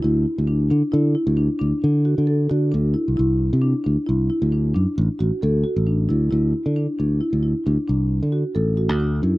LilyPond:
<<
  \new Staff \with { instrumentName = "Marimba" } { \time 7/4 \key d \mixolydian \tempo 4 = 134 e'4 d'8 d'8 e'8 e'8 d'8 d'4 fis'8 a'8 fis'8 d'8 e'8 | e'4 d'8 d'8 e'8 e'8 d'8 d'4 fis'8 a'8 fis'8 d'8 e'8 | e'4 d'8 d'8 e'8 e'8 d'8 d'4 fis'8 a'8 fis'8 d'8 e'8 | }
  \new Staff \with { instrumentName = "Fingered electric bass" } { \clef bass \time 7/4 \key d \mixolydian d,8 r16 d,8. d16 r16 d8 r16 d,8 r16 d,16 r16 d8. d8. d8 d,8 r16 c,16 | c,8. c8 r16 d,16 r16 c,8 r16 d,8. fis,16 r16 a,,16 r16 a,,16 r16 d,8 r16 a,,8. d,8 | d,8 r16 d8 r16 d,8 r16 d,8 r16 d,16 r16 c,8. d8 r16 a,,8. d,8. fis,16 r16 | }
>>